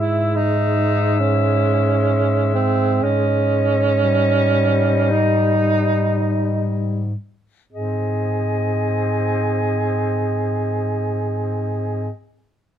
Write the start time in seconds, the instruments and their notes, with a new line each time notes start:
Already playing: bass clarinet G#2, tenor saxophone G#3, alto saxophone E4, clarinet E5
0.36 alto saxophone D#4
1.20 alto saxophone C#4
2.54 alto saxophone C4
3.02 bass clarinet G#2, alto saxophone C#4, clarinet D#5
4.03 tenor saxophone G3
5.11 alto saxophone D#4
7.72 bass clarinet G#2, tenor saxophone C4, alto saxophone G#4, clarinet D#5